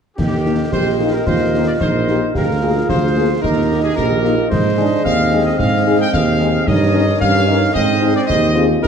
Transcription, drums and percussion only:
0.18 concert bass drum, snare, crash
0.72 concert bass drum, snare
1.26 concert bass drum, snare
1.80 concert bass drum, snare
2.08 snare
2.35 concert bass drum, snare
2.89 concert bass drum, snare
3.44 concert bass drum, snare
3.98 concert bass drum, snare
4.25 snare
4.51 concert bass drum, snare, crash
5.06 concert bass drum, snare
5.59 concert bass drum, snare
6.14 concert bass drum, snare
6.40 snare
6.67 concert bass drum, snare
7.21 concert bass drum, snare
7.75 concert bass drum, snare
8.30 concert bass drum, snare
8.84 concert bass drum, snare, crash

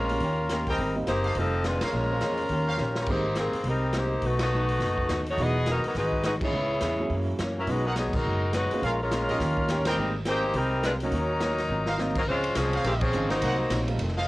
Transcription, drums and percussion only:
0.09 open hi-hat
0.20 kick, open hi-hat
0.49 snare, closed hi-hat
0.67 kick, open hi-hat
0.78 kick, open hi-hat
1.07 snare, closed hi-hat
1.24 open hi-hat
1.35 kick, open hi-hat
1.64 snare, closed hi-hat
1.81 snare, ride
2.21 snare, closed hi-hat
2.38 open hi-hat
2.49 kick, open hi-hat
2.78 snare
2.96 snare
3.06 kick, crash
3.35 snare, closed hi-hat
3.53 open hi-hat
3.64 kick, open hi-hat
3.93 snare, closed hi-hat
4.22 kick, open hi-hat
4.39 snare, ride
4.69 open hi-hat
4.80 kick, snare, open hi-hat
4.97 kick
5.09 snare, closed hi-hat
5.26 open hi-hat
5.38 kick, open hi-hat
5.66 snare, closed hi-hat
5.84 open hi-hat
5.95 kick, snare, open hi-hat
6.12 kick
6.23 snare, closed hi-hat
6.41 kick, crash
6.81 snare, closed hi-hat
7.10 kick, open hi-hat
7.39 snare, closed hi-hat
7.67 kick, open hi-hat
7.96 snare, closed hi-hat
8.13 kick, crash
8.53 snare, closed hi-hat
8.71 open hi-hat
8.82 kick, open hi-hat
9.11 snare, closed hi-hat
9.29 open hi-hat
9.40 kick, snare, open hi-hat
9.57 kick
9.69 snare, closed hi-hat
9.85 snare, ride
10.25 snare, closed hi-hat
10.54 kick, open hi-hat
10.83 snare, closed hi-hat
11.00 open hi-hat
11.12 kick, open hi-hat
11.40 snare, closed hi-hat
11.58 snare, open hi-hat
11.86 snare
11.98 snare
12.15 kick, crash
12.27 kick
12.44 ride
12.55 kick, snare, hi-hat pedal, ride
12.73 ride
12.84 kick, ride
13.01 kick, crash
13.13 hi-hat pedal
13.30 snare, ride
13.42 kick, ride
13.70 kick, snare, hi-hat pedal, ride
13.88 ride
13.99 kick, ride
14.08 snare
14.18 snare

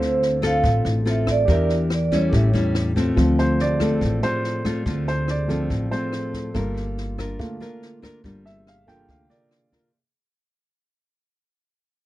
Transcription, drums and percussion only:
0.01 snare
0.22 snare
0.43 kick, cross-stick, snare
0.64 kick, snare
0.85 snare
1.06 snare
1.27 kick, cross-stick, snare
1.48 kick, snare
1.69 snare
1.90 cross-stick, snare
2.12 kick, snare
2.33 kick, snare
2.54 snare
2.75 cross-stick, snare
2.96 kick, snare
3.17 kick, cross-stick, snare
3.38 snare
3.59 snare
3.80 kick, cross-stick, snare
4.01 kick, snare
4.22 snare
4.44 snare
4.65 kick, cross-stick, snare
4.86 kick, snare
5.07 snare
5.28 cross-stick, snare
5.49 kick, snare
5.70 kick, snare
5.92 snare
6.13 cross-stick, snare
6.33 kick, snare
6.55 kick, cross-stick, snare
6.76 snare
6.98 snare
7.18 kick, cross-stick, snare
7.39 kick, snare
7.61 snare
7.82 snare
8.03 kick, cross-stick, snare
8.24 kick, snare
8.46 snare
8.67 cross-stick, snare
8.88 kick, snare
9.08 kick, snare
9.30 snare
9.51 cross-stick, snare
9.72 kick, snare

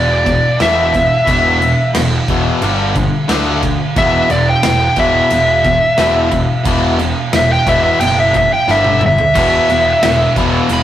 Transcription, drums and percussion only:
0.26 kick, crash
0.60 snare, crash
0.94 kick, crash
1.27 kick, crash
1.62 crash
1.95 snare, crash
2.28 kick, crash
2.62 crash
2.95 kick, crash
3.29 snare, crash
3.63 kick, crash
3.96 kick, crash
4.30 crash
4.63 snare, crash
4.96 kick, crash
5.30 crash
5.64 kick, crash
5.98 snare, crash
6.31 kick, crash
6.65 kick, crash
6.99 crash
7.33 snare, crash
7.67 kick, crash
8.00 crash
8.34 kick, crash
8.68 snare
8.84 high tom
9.01 mid tom
9.18 floor tom
9.35 kick, crash
9.70 crash
10.03 snare, crash
10.36 kick, crash
10.69 crash

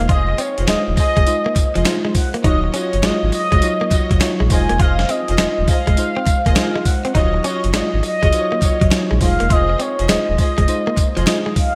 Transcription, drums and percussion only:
0.09 kick, closed hi-hat
0.38 closed hi-hat, tambourine
0.58 closed hi-hat
0.68 snare, clap, closed hi-hat, tambourine
0.97 kick, open hi-hat, tambourine
1.17 kick, closed hi-hat
1.27 closed hi-hat, tambourine
1.56 kick, clap, closed hi-hat, tambourine
1.75 closed hi-hat
1.85 snare, clap, closed hi-hat, tambourine
2.15 kick, open hi-hat, tambourine
2.34 closed hi-hat
2.44 kick, closed hi-hat
2.74 closed hi-hat, tambourine
2.93 closed hi-hat
3.03 snare, clap, closed hi-hat, tambourine
3.32 open hi-hat, tambourine
3.52 kick, closed hi-hat
3.62 closed hi-hat, tambourine
3.91 kick, clap, closed hi-hat, tambourine
4.11 kick, closed hi-hat
4.21 snare, clap, closed hi-hat, tambourine
4.50 kick, open hi-hat, tambourine
4.69 closed hi-hat
4.80 kick, closed hi-hat
4.99 snare
5.09 closed hi-hat, tambourine
5.28 closed hi-hat
5.38 snare, clap, closed hi-hat, tambourine
5.68 kick, open hi-hat, tambourine
5.87 kick, closed hi-hat
5.97 closed hi-hat, tambourine
6.26 kick, clap, closed hi-hat, tambourine
6.46 kick, closed hi-hat
6.56 snare, clap, closed hi-hat, tambourine
6.85 kick, open hi-hat, tambourine
7.05 closed hi-hat
7.15 kick, closed hi-hat
7.44 closed hi-hat, tambourine
7.64 closed hi-hat
7.74 snare, clap, closed hi-hat, tambourine
8.03 open hi-hat, tambourine
8.23 kick, closed hi-hat
8.33 closed hi-hat, tambourine
8.62 kick, clap, closed hi-hat, tambourine
8.81 kick, closed hi-hat
8.91 snare, clap, closed hi-hat, tambourine
9.21 kick, open hi-hat, tambourine
9.40 closed hi-hat
9.50 kick, closed hi-hat
9.80 closed hi-hat, tambourine
9.99 closed hi-hat
10.09 snare, clap, closed hi-hat, tambourine
10.38 kick, open hi-hat, tambourine
10.58 kick, closed hi-hat
10.68 closed hi-hat, tambourine
10.97 kick, clap, closed hi-hat, tambourine
11.17 closed hi-hat
11.27 snare, clap, closed hi-hat, tambourine
11.56 kick, open hi-hat, tambourine

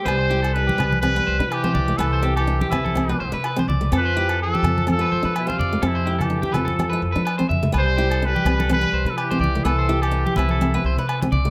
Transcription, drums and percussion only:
0.08 low agogo
0.44 low agogo
0.69 high conga
0.80 low conga, low agogo
0.93 high conga
1.03 high conga, low agogo
1.52 low agogo
1.64 high conga
1.75 low conga
2.00 low agogo
2.37 low agogo
2.61 high conga
2.72 low conga, low agogo
2.86 high conga
2.97 high conga, low agogo
3.44 low agogo
3.59 high conga
3.70 low conga
3.93 low agogo
4.29 low agogo
4.55 high conga
4.64 low conga, low agogo
4.78 high conga
4.88 high conga, low agogo
5.36 low agogo
5.50 high conga
5.61 low conga
5.83 low agogo
6.21 low conga, low agogo
6.43 high conga
6.54 low conga, low agogo
6.68 high conga
6.79 high conga, low agogo
7.27 low agogo
7.40 high conga
7.51 low conga
7.63 low conga
7.74 low agogo
8.12 low agogo
8.36 high conga
8.46 low conga, low agogo
8.60 high conga
8.70 high conga, low agogo
9.18 low agogo
9.31 high conga
9.44 low conga
9.66 low agogo
10.03 low agogo
10.27 high conga
10.36 low conga, low agogo
10.49 high conga
10.61 high conga, low agogo
11.09 low agogo
11.22 high conga
11.32 low conga

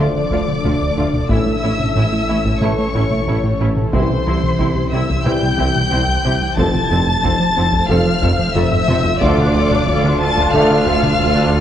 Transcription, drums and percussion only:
0.30 taiko
0.48 taiko mid
0.64 taiko mid
1.13 taiko mid
1.29 taiko
1.46 taiko mid
1.79 taiko mid
1.95 taiko
2.45 taiko
2.61 taiko mid
2.94 taiko
3.11 taiko mid
3.28 taiko mid
3.77 taiko mid
3.93 taiko
4.10 taiko mid
4.43 taiko mid
4.60 taiko
5.09 taiko
5.26 taiko mid
5.58 taiko
5.75 taiko mid
5.92 taiko mid
6.41 taiko mid
6.57 taiko
6.74 taiko mid
7.07 taiko mid
7.23 taiko
7.73 taiko
7.89 taiko mid
8.22 taiko
8.39 taiko mid
8.55 taiko mid
8.72 taiko low-mid
8.88 taiko mid
9.04 taiko low
9.21 taiko
9.38 taiko mid
9.70 taiko mid
9.87 taiko
10.36 taiko
10.53 taiko mid
10.86 taiko
11.02 taiko mid
11.19 taiko mid

